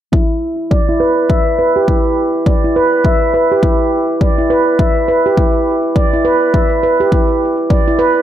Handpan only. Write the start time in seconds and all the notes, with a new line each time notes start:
0.12 E4
0.71 D5
0.89 E4
1.00 B4
1.29 E5
1.59 B4
1.76 G4
1.88 E4
2.47 D5
2.64 E4
2.76 B4
3.06 E5
3.34 B4
3.52 G4
3.63 E4
4.21 D5
4.38 E4
4.50 B4
4.80 E5
5.08 B4
5.26 G4
5.38 E4
5.96 D5
6.13 E4
6.25 B4
6.54 E5
6.83 B4
7.00 G4
7.12 E4
7.70 D5
7.88 E4
7.99 B4